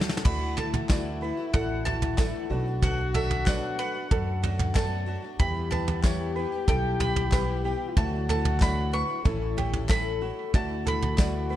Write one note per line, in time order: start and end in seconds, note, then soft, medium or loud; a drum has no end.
0.00 0.21 A1 medium
0.00 0.21 A2 medium
0.00 0.24 A3 medium
0.00 0.26 A3 medium
0.00 0.25 C#4 medium
0.00 0.25 E4 medium
0.00 0.26 E4 medium
0.00 0.24 F#4 medium
0.00 0.26 A4 medium
0.00 0.27 C#5 medium
0.00 0.26 E5 medium
0.00 0.27 G5 medium
0.00 0.25 A5 loud
0.00 snare loud
0.08 snare loud
0.08 tambourine soft
0.17 snare loud
0.24 1.30 D2 loud
0.24 2.46 D2 medium
0.24 0.41 D3 medium
0.24 2.46 D3 medium
0.24 0.41 E3 medium
0.24 0.41 A3 medium
0.24 0.69 A3 medium
0.24 2.46 E4 loud
0.24 0.69 E4 medium
0.24 0.41 E4 medium
0.24 0.69 F#4 medium
0.24 0.57 F#4 loud
0.24 0.39 F#4 medium
0.24 0.69 D5 medium
0.24 0.69 E5 loud
0.24 0.56 B5 medium
0.24 kick loud
0.24 floor tom loud
0.24 crash loud
0.40 0.57 A3 soft
0.40 0.58 E4 medium
0.40 0.57 F#4 medium
0.56 0.73 E3 medium
0.56 0.74 A3 medium
0.56 0.74 E4 medium
0.56 0.72 F#4 medium
0.56 0.89 A4 medium
0.56 1.53 A5 medium
0.56 floor tom medium
0.73 0.89 A3 soft
0.73 0.90 E4 medium
0.73 0.89 F#4 medium
0.73 floor tom loud
0.89 1.22 D3 medium
0.89 1.19 E3 medium
0.89 1.33 A3 medium
0.89 1.21 A3 medium
0.89 1.33 E4 medium
0.89 1.22 E4 medium
0.89 1.33 F#4 medium
0.89 1.23 F#4 medium
0.89 1.33 D5 medium
0.89 1.21 D5 medium
0.89 1.33 E5 medium
0.89 kick loud
0.89 snare loud
0.89 clap loud
0.89 tambourine loud
1.21 1.37 E3 medium
1.21 1.38 A3 medium
1.21 1.37 E4 medium
1.21 1.36 F#4 medium
1.21 1.53 B4 medium
1.37 1.85 A3 soft
1.37 1.86 E4 medium
1.37 1.86 F#4 medium
1.54 2.32 A1 medium
1.54 1.98 A3 medium
1.54 1.98 E4 medium
1.54 1.98 F#4 medium
1.54 1.85 A4 medium
1.54 1.98 D5 medium
1.54 1.98 E5 medium
1.54 1.85 F#5 medium
1.54 kick loud
1.54 floor tom loud
1.85 2.02 E3 medium
1.85 2.02 A3 medium
1.85 2.02 E4 medium
1.85 2.18 F#4 medium
1.85 2.00 F#4 medium
1.85 2.83 A5 loud
1.85 floor tom medium
2.01 2.17 A3 soft
2.01 2.18 E4 medium
2.01 2.18 F#4 medium
2.01 floor tom loud
2.17 2.50 D3 medium
2.17 2.49 E3 loud
2.17 2.49 A3 medium
2.17 2.50 A3 medium
2.17 2.50 E4 medium
2.17 2.51 E4 loud
2.17 2.49 F#4 medium
2.17 2.51 F#4 loud
2.17 2.50 A4 medium
2.17 2.49 D5 medium
2.17 2.50 E5 medium
2.17 kick loud
2.17 snare loud
2.17 clap loud
2.17 tambourine loud
2.50 3.54 B1 loud
2.50 5.04 B1 medium
2.50 5.04 B2 medium
2.50 2.66 F#3 medium
2.50 3.28 A3 medium
2.50 2.67 A3 medium
2.50 3.28 D4 medium
2.50 2.66 D4 medium
2.50 5.08 F#4 loud
2.50 2.82 F#4 medium
2.50 3.27 F#4 medium
2.50 2.64 F#4 medium
2.50 3.28 B4 medium
2.50 3.28 D5 medium
2.66 2.82 A3 soft
2.66 2.83 D4 medium
2.66 2.82 F#4 medium
2.82 2.98 B2 medium
2.82 2.98 F#3 medium
2.82 2.99 A3 medium
2.82 2.98 D4 medium
2.82 3.14 F#4 medium
2.82 2.96 F#4 medium
2.82 3.14 F#5 loud
2.82 kick loud
2.82 floor tom loud
2.98 3.14 A3 medium
2.98 3.15 D4 medium
2.98 3.14 F#4 medium
3.14 3.30 F#3 medium
3.14 3.31 A3 medium
3.14 3.31 D4 medium
3.14 3.29 F#4 medium
3.14 3.46 A4 medium
3.14 3.46 E5 medium
3.14 floor tom medium
3.30 3.46 A3 soft
3.30 3.47 D4 medium
3.30 3.46 F#4 medium
3.30 floor tom medium
3.46 3.79 B2 medium
3.46 3.77 F#3 medium
3.46 3.91 A3 medium
3.46 3.79 A3 medium
3.46 3.91 D4 medium
3.46 3.80 D4 medium
3.46 3.91 F#4 medium
3.46 3.80 F#4 medium
3.46 3.91 B4 medium
3.46 3.91 C#5 medium
3.46 3.78 D5 medium
3.46 3.78 F#5 medium
3.46 kick loud
3.46 snare loud
3.46 clap loud
3.46 tambourine loud
3.78 3.95 F#3 medium
3.78 3.95 A3 medium
3.78 3.95 D4 medium
3.78 3.93 F#4 medium
3.78 4.10 B4 medium
3.78 4.75 F#5 loud
3.94 4.43 A3 medium
3.94 4.44 D4 medium
3.94 4.43 F#4 medium
4.11 5.15 F#2 loud
4.11 4.55 A3 medium
4.11 4.55 D4 medium
4.11 4.55 F#4 medium
4.11 4.42 A4 loud
4.11 4.55 B4 medium
4.11 4.55 D5 medium
4.11 kick loud
4.11 floor tom loud
4.42 4.59 F#3 medium
4.42 4.60 A3 medium
4.42 4.59 D4 medium
4.42 4.75 F#4 medium
4.42 4.57 F#4 medium
4.42 floor tom medium
4.58 4.75 A3 soft
4.58 4.75 D4 medium
4.58 4.75 F#4 medium
4.58 floor tom loud
4.75 5.07 B2 loud
4.75 5.05 F#3 medium
4.75 5.19 A3 medium
4.75 5.06 A3 medium
4.75 5.19 D4 medium
4.75 5.07 D4 loud
4.75 5.19 F#4 medium
4.75 5.08 F#4 loud
4.75 5.07 A4 medium
4.75 5.19 B4 medium
4.75 5.19 D5 medium
4.75 5.39 A5 loud
4.75 kick loud
4.75 snare loud
4.75 clap loud
4.75 tambourine loud
5.06 5.23 F#3 medium
5.06 5.23 A3 medium
5.06 5.23 D4 medium
5.06 5.39 F#4 medium
5.06 5.21 F#4 medium
5.22 5.40 A3 soft
5.22 5.40 D4 medium
5.22 5.39 F#4 medium
5.39 6.44 E2 loud
5.39 7.93 E2 medium
5.39 5.55 E3 medium
5.39 7.93 E3 medium
5.39 5.84 G3 loud
5.39 5.56 B3 medium
5.39 5.83 B3 medium
5.39 5.83 E4 medium
5.39 5.55 E4 medium
5.39 7.91 G4 loud
5.39 5.71 G4 loud
5.39 5.53 G4 medium
5.39 5.84 B4 medium
5.39 5.84 E5 loud
5.39 5.70 B5 loud
5.39 kick loud
5.39 floor tom loud
5.55 5.71 B3 soft
5.55 5.72 E4 medium
5.55 5.71 G4 medium
5.71 5.87 E3 medium
5.71 5.88 B3 medium
5.71 5.88 E4 medium
5.71 5.86 G4 medium
5.71 6.03 B4 medium
5.71 6.68 A5 loud
5.71 floor tom medium
5.87 6.03 B3 medium
5.87 6.04 E4 soft
5.87 6.03 G4 medium
5.87 floor tom medium
6.04 6.35 E3 medium
6.04 6.48 G3 medium
6.04 6.48 B3 medium
6.04 6.36 B3 medium
6.04 6.48 E4 medium
6.04 6.37 E4 medium
6.04 6.37 G4 loud
6.04 6.48 B4 medium
6.04 6.35 C#5 loud
6.04 6.48 E5 medium
6.04 kick loud
6.04 snare loud
6.04 clap loud
6.04 tambourine loud
6.36 6.52 E3 medium
6.36 6.52 B3 medium
6.36 6.53 E4 medium
6.36 6.51 G4 medium
6.36 6.67 B4 medium
6.52 7.00 B3 soft
6.52 7.01 E4 medium
6.52 7.00 G4 medium
6.68 7.72 B1 loud
6.68 7.12 G3 medium
6.68 7.12 B3 medium
6.68 7.12 E4 medium
6.68 6.99 A4 loud
6.68 7.12 B4 medium
6.68 7.12 E5 loud
6.68 6.98 G5 loud
6.68 kick loud
6.68 floor tom loud
7.00 7.16 E3 medium
7.00 7.17 B3 medium
7.00 7.16 E4 medium
7.00 7.32 G4 medium
7.00 7.15 G4 medium
7.00 7.96 B5 loud
7.00 floor tom loud
7.16 7.32 B3 soft
7.16 7.32 E4 medium
7.16 7.32 G4 medium
7.16 floor tom loud
7.32 7.63 E3 loud
7.32 7.76 G3 medium
7.32 7.76 B3 medium
7.32 7.64 B3 medium
7.32 7.76 E4 medium
7.32 7.65 E4 medium
7.32 7.65 G4 loud
7.32 7.76 B4 medium
7.32 7.64 B4 medium
7.32 7.76 E5 medium
7.32 kick loud
7.32 snare loud
7.32 clap loud
7.32 tambourine loud
7.64 7.96 E3 medium
7.64 7.97 B3 medium
7.64 7.97 E4 medium
7.64 7.96 G4 medium
7.64 7.98 G4 medium
7.89 7.97 F4 medium
7.96 9.01 D2 loud
7.96 9.22 D2 medium
7.96 8.13 D3 medium
7.96 9.21 D3 medium
7.96 8.13 E3 medium
7.96 8.41 F#3 loud
7.96 8.13 A3 medium
7.96 8.41 D4 medium
7.96 8.41 E4 medium
7.96 8.13 E4 medium
7.96 9.24 F#4 loud
7.96 8.28 F#4 loud
7.96 8.12 F#4 medium
7.96 8.41 A4 medium
7.96 8.41 E5 loud
7.96 8.27 A5 loud
7.96 kick loud
7.96 floor tom loud
8.13 8.29 A3 soft
8.13 8.30 E4 medium
8.13 8.29 F#4 medium
8.29 8.45 E3 medium
8.29 8.45 A3 medium
8.29 8.45 E4 medium
8.29 8.43 F#4 medium
8.29 8.60 A4 medium
8.29 8.62 A5 loud
8.29 floor tom medium
8.44 8.61 A3 soft
8.44 8.62 E4 medium
8.44 8.61 F#4 medium
8.44 floor tom loud
8.60 8.93 D3 medium
8.60 8.90 E3 medium
8.60 9.05 F#3 medium
8.60 8.92 A3 medium
8.60 9.05 D4 medium
8.60 9.05 E4 medium
8.60 8.93 E4 medium
8.60 8.94 F#4 medium
8.60 9.05 A4 medium
8.60 8.92 D5 medium
8.60 9.05 E5 medium
8.60 8.93 B5 loud
8.60 kick loud
8.60 snare loud
8.60 clap medium
8.60 tambourine medium
8.91 9.08 E3 medium
8.91 9.09 A3 medium
8.91 9.09 E4 medium
8.91 9.07 F#4 medium
8.91 9.25 B4 medium
8.91 9.90 C#6 loud
9.08 9.24 A3 soft
9.08 9.25 E4 medium
9.08 9.25 F#4 medium
9.25 10.50 A1 medium
9.25 10.30 A1 medium
9.25 9.57 A2 medium
9.25 10.50 A2 medium
9.25 9.57 E3 medium
9.25 9.69 A3 medium
9.25 9.55 A3 medium
9.25 9.69 C#4 medium
9.25 9.57 C#4 medium
9.25 10.17 E4 medium
9.25 9.69 E4 medium
9.25 9.58 E4 medium
9.25 9.57 A4 medium
9.25 9.58 A4 medium
9.25 9.69 C#5 medium
9.25 9.69 E5 medium
9.25 kick loud
9.25 floor tom loud
9.57 9.73 A3 medium
9.57 9.74 C#4 medium
9.57 9.73 E4 medium
9.57 9.89 G4 medium
9.57 9.72 A4 medium
9.57 floor tom medium
9.73 9.89 A3 medium
9.73 9.89 C#4 medium
9.73 9.90 E4 medium
9.73 9.89 A4 medium
9.73 floor tom medium
9.89 10.22 A2 medium
9.89 10.22 E3 medium
9.89 10.33 A3 medium
9.89 10.20 A3 medium
9.89 10.33 C#4 medium
9.89 10.21 C#4 loud
9.89 10.33 E4 medium
9.89 10.22 E4 loud
9.89 10.21 A4 medium
9.89 10.23 A4 loud
9.89 10.33 E5 medium
9.89 10.54 B5 loud
9.89 kick loud
9.89 snare loud
9.89 clap loud
9.89 tambourine loud
10.21 10.54 A3 medium
10.21 10.54 C#4 medium
10.21 10.54 E4 medium
10.21 10.53 F#4 medium
10.21 10.55 A4 medium
10.53 11.56 D2 medium
10.53 11.56 D2 loud
10.53 10.70 D3 medium
10.53 11.56 D3 medium
10.53 10.70 E3 medium
10.53 10.98 A3 loud
10.53 10.70 A3 medium
10.53 10.98 E4 medium
10.53 10.70 E4 medium
10.53 11.56 F#4 loud
10.53 10.98 F#4 medium
10.53 10.86 F#4 medium
10.53 10.68 F#4 medium
10.53 10.98 D5 medium
10.53 10.98 E5 loud
10.53 10.88 A5 loud
10.53 kick loud
10.53 floor tom loud
10.69 10.85 A3 soft
10.69 10.86 E4 medium
10.69 10.86 F#4 medium
10.85 11.02 E3 medium
10.85 11.02 A3 medium
10.85 11.02 E4 medium
10.85 11.00 F#4 medium
10.85 11.18 A4 medium
10.85 11.47 B5 loud
10.85 floor tom medium
11.01 11.18 A3 soft
11.01 11.18 E4 medium
11.01 11.18 F#4 medium
11.01 floor tom medium
11.18 11.50 D3 medium
11.18 11.48 E3 medium
11.18 11.56 A3 medium
11.18 11.50 A3 medium
11.18 11.56 E4 medium
11.18 11.51 E4 medium
11.18 11.56 F#4 medium
11.18 11.51 F#4 medium
11.18 11.50 D5 medium
11.18 11.56 D5 medium
11.18 11.56 E5 medium
11.18 kick loud
11.18 snare loud
11.18 clap loud
11.18 tambourine loud
11.50 11.56 E3 medium
11.50 11.56 A3 medium
11.50 11.56 E4 medium
11.50 11.56 F#4 medium
11.50 11.56 B4 medium